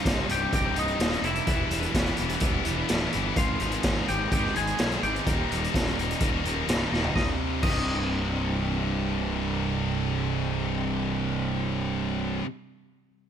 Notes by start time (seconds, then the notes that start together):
Already playing: C2 G2 C3 F4 G4 C5 D#5 F5 C6
0.05 C1 C2 G2 C3 G3 D#4, kick, snare, closed hi-hat
0.28 C1 C3 G3 D#4 G4 G5, closed hi-hat
0.52 C1 C2 G2 C3 G3 D#4 G4 G5, kick, closed hi-hat
0.76 C1 C2 G2 C3 G3 D#4 D#5, closed hi-hat
0.88 closed hi-hat
0.99 D#1 C2 G2 C3 G3 D#4, snare, closed hi-hat
1.13 closed hi-hat
1.22 F1 C3 G3 D#4 E4, closed hi-hat
1.27 E5
1.35 closed hi-hat
1.47 E1 E2 B2 E3 G3 B3 E4 B4 E5 B5, kick, closed hi-hat
1.70 E1 E3 G3 B3 E4, closed hi-hat
1.82 closed hi-hat
1.93 E1 E2 B2 E3 G3 B3 E4, kick, snare, closed hi-hat
2.06 closed hi-hat
2.17 E1 E3 G3 B3 E4, closed hi-hat
2.29 closed hi-hat
2.40 E1 E2 B2 E3 G3 B3 E4, kick, closed hi-hat
2.64 E1 E2 B2 E3 G3 B3 E4, closed hi-hat
2.88 D1 E2 B2 E3 G3 B3 E4, snare, closed hi-hat
3.12 G1 E3 G3 B3 E4, closed hi-hat
3.36 G#1 G#2 D#3 G#3 B3 D#4 F4 G#4 D#5 F5, kick, closed hi-hat
3.60 G#1 G#3 B3 D#4 G#4, closed hi-hat
3.72 closed hi-hat
3.83 G#1 G#2 D#3 G#3 B3 D#4 G#4, kick, snare, closed hi-hat
4.08 G#1 G#3 B3 D#4 G4 G#4 G5, closed hi-hat
4.30 G#1 G#2 D#3 G#3 B3 D#4 G4 G#4 G5, kick, closed hi-hat
4.45 snare
4.54 G#1 G#2 D#3 G#3 B3 D#4 G#4 G#5, closed hi-hat
4.67 closed hi-hat
4.78 B1 G#2 D#3 G#3 B3 D#4 G#4, snare, closed hi-hat
4.91 closed hi-hat
5.03 G#1 G#3 B3 D#4 G4 G#4 G5, closed hi-hat
5.16 closed hi-hat
5.26 D#1 D#2 A#2 D#3 G3 A#3 D#4 G4 A#4 A#5, kick, closed hi-hat
5.50 D#1 D#3 G3 A#3 D#4, closed hi-hat
5.64 closed hi-hat
5.73 D#1 D#2 A#2 D#3 G3 A#3 D#4, kick, snare, closed hi-hat
5.88 closed hi-hat
5.97 D#1 D#3 G3 A#3 D#4, closed hi-hat
6.11 closed hi-hat
6.20 D#1 D#2 A#2 D#3 G3 A#3 D#4, kick, closed hi-hat
6.45 D#1 D#2 A#2 D#3 G3 A#3 D#4, closed hi-hat
6.67 C1 D#2 A#2 D#3 G3 A#3, snare, closed hi-hat
6.72 D#4
6.92 D#1 D#3 G3 A#3 D#4, snare
7.04 floor tom
7.15 C1 C2 G2 C3 C4 G4 D#5 G5, kick, snare
7.19 C3
7.63 C1 C2 G2 D#5, kick, crash
7.67 C3